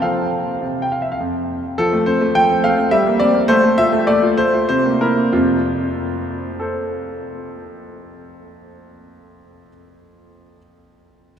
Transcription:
grand piano
0.02 F3 C4 A4 F5
0.61 C3
0.82 G5
0.92 F5
1.02 E5
1.12 F5
1.20 F2
1.78 F3 A4
1.93 A3
2.06 C4 C5
2.21 A3
2.35 F3 G5
2.50 C4
2.64 A3 F5
2.78 C4
2.91 G3 E5
3.07 A#3
3.20 C4 D5
3.34 A#3
3.48 A3 C5
3.63 A3
3.78 F4 E5
3.92 A3
4.07 A3 D5
4.22 F4
4.38 A3 C5
4.53 F4
4.69 C3 C5
4.85 A#3
5.01 E4 A#4
5.17 A#3
5.32 F2 C3 F4
6.60 A4 C5

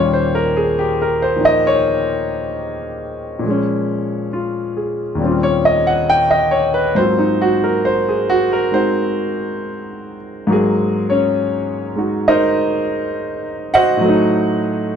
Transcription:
grand piano
Already playing: D#2 A#2 G3 C#4 F4 C#5
0.13 C5
0.35 A#4
0.57 G#4
0.79 G4
1.02 A#4
1.22 C5
1.36 A#2 F3 A#3 D#4
1.45 D#5
1.67 C#5
3.39 A#2
3.43 F3 G#3
3.50 C#4
4.33 F4
4.77 G#4
5.15 D#2 A#2
5.19 G3 C4
5.25 C#4 F4
5.43 C#5
5.65 D#5
5.87 F#5
6.10 G5
6.31 D#5
6.51 C#5
6.74 B4
6.95 G#2 F#3 A#3 C4 C5
7.00 F4
7.19 D#4
7.41 F#4
7.64 A#4
7.85 C5
8.09 G#4
8.30 F#4
8.53 A#4
8.72 G#3 C4 D#4 F#4 C5
10.47 G#2 F#3 A#3
10.52 G#4
11.10 C#4 C#5
11.95 G#3 D#4 F#4
12.28 D#4 A#4 C5 D#5
13.74 F#4 C5 D#5 F#5
13.97 A2 F#3
14.05 A3 D#4

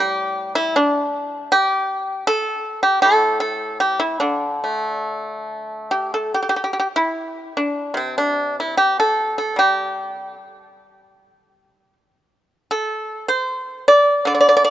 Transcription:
pipa
Already playing: A2 G3
0.00 G4
0.55 E4
0.76 D4
1.52 G4
2.27 A4
2.83 G4
3.02 A2 A4
3.40 A4
3.80 G4
4.00 E4
4.20 D3 D4
4.64 A3
5.91 G4
6.14 A4
6.34 G4
6.42 G4
6.49 G4
6.56 G4
6.64 G4
6.73 G4
6.80 G4
6.96 E4
7.57 D4
7.94 C3 C4
8.18 D4
8.60 E4
8.77 G4
9.00 A4
9.38 A4
9.56 G3 G4
12.71 A4
13.28 C5
13.88 D5
14.25 D3 D5
14.35 D5
14.41 D5
14.49 D5
14.57 D5
14.64 D5

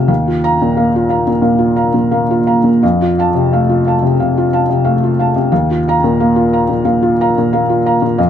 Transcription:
felt piano
Already playing: C3 A3 F4 F5 A5
0.08 D#2 F5
0.28 F4
0.44 F5 A#5
0.62 A#2
0.77 A#3 F5
0.96 F4
1.09 F5 A#5
1.27 A#2
1.42 A#2 F5
1.58 F4
1.76 F5 A#5
1.94 A#2
2.11 A#3 F5
2.31 F4
2.47 F5 A#5
2.64 A#2
2.83 F2 F5
3.02 F4
3.18 F5 A5
3.34 C3
3.52 A3 F5
3.69 F4
3.87 F5 A5
4.03 C3
4.20 C3 F5
4.38 F4
4.53 F5 A5
4.69 C3
4.85 A3 F5
5.03 F4
5.19 F5 A5
5.36 C3
5.52 D#2 F5
5.71 F4
5.88 F5 A#5
6.04 A#2
6.20 A#3 F5
6.36 F4
6.53 F5 A#5
6.69 A#2
6.85 A#2 F5
7.02 F4
7.21 F5 A#5
7.38 A#2
7.53 A#3 F5
7.70 F4
7.86 F5 A#5
8.02 A#2
8.18 F2 F5

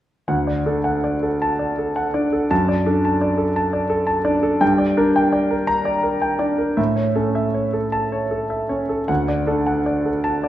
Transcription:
grand piano
0.28 D2 F#5
0.47 D5
0.66 D4 A4
0.84 F#5
1.04 D5
1.23 A4
1.42 A5
1.59 D5
1.78 A4
1.96 F#5
2.14 D4 D5
2.33 A4
2.51 F#2 A5
2.69 D5
2.86 D4 A4
3.05 A5
3.21 D5
3.38 A4
3.56 A5
3.73 D5
3.90 A4
4.07 A5
4.25 D4 D5
4.43 A4
4.61 G2 G5
4.78 D5
4.97 D4 A#4
5.16 G5
5.33 D5
5.51 A#4
5.67 A#5
5.85 D5
6.03 A#4
6.22 G5
6.39 D4 D5
6.58 A#4
6.77 A2 E5
6.96 C#5
7.15 C#4 A4
7.35 E5
7.54 C#5
7.73 A4
7.92 A5
8.12 C#5
8.31 A4
8.50 E5
8.69 C#4 C#5
8.89 A4
9.08 D2 F#5
9.28 D5
9.47 D4 A4
9.67 F#5
9.86 D5
10.05 A4
10.24 A5
10.44 D5

